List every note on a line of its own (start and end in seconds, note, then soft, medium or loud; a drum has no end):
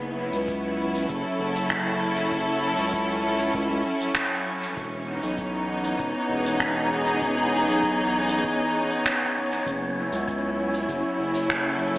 0.00 0.30 F#1 loud
0.00 4.77 F#3 medium
0.00 1.12 B3 medium
0.06 4.77 E4 medium
0.15 6.74 C#4 medium
0.33 1.06 C#2 medium
0.33 cabasa medium
0.48 kick loud
0.48 cabasa medium
0.95 cabasa medium
1.09 1.23 F#1 loud
1.09 kick loud
1.09 cabasa medium
1.14 4.77 A4 medium
1.40 2.29 F#1 loud
1.56 cabasa medium
1.70 finger snap loud
1.70 kick loud
1.70 cabasa medium
2.16 cabasa medium
2.32 2.75 F#1 loud
2.32 kick loud
2.32 cabasa medium
2.78 3.51 C#2 medium
2.78 cabasa medium
2.93 kick loud
2.93 cabasa medium
3.39 cabasa medium
3.54 3.68 C#2 loud
3.54 kick loud
3.54 cabasa medium
3.70 3.83 C#2 loud
4.01 cabasa medium
4.15 finger snap medium
4.15 kick loud
4.15 cabasa medium
4.63 cabasa medium
4.76 5.20 E1 loud
4.76 9.66 E3 medium
4.76 11.98 C#4 medium
4.76 11.98 C#5 medium
4.76 kick loud
4.76 cabasa medium
5.02 10.83 B3 medium
5.09 9.67 D#4 medium
5.23 5.96 B1 medium
5.23 cabasa medium
5.38 kick loud
5.38 cabasa medium
5.84 cabasa medium
5.99 6.13 E1 loud
5.99 kick loud
5.99 cabasa medium
6.28 7.19 E1 loud
6.28 9.66 G#4 medium
6.46 cabasa medium
6.60 finger snap medium
6.60 kick loud
6.60 cabasa medium
7.07 cabasa medium
7.21 7.65 E1 loud
7.21 kick loud
7.21 cabasa medium
7.68 8.41 B1 medium
7.68 cabasa medium
7.82 kick loud
7.82 cabasa medium
8.28 cabasa medium
8.44 kick loud
8.44 cabasa medium
8.90 cabasa medium
9.05 finger snap medium
9.05 kick loud
9.05 cabasa medium
9.52 cabasa medium
9.66 10.10 F#1 loud
9.66 11.98 F#3 medium
9.66 kick loud
9.66 cabasa medium
9.96 11.98 E4 medium
10.08 11.98 C#4 medium
10.12 10.86 C#2 medium
10.12 cabasa medium
10.28 kick loud
10.28 cabasa medium
10.74 cabasa medium
10.89 11.03 F#1 medium
10.89 kick loud
10.89 cabasa medium
11.19 11.98 F#1 loud
11.35 cabasa medium
11.46 11.98 A4 medium
11.50 finger snap medium
11.50 kick loud
11.50 cabasa medium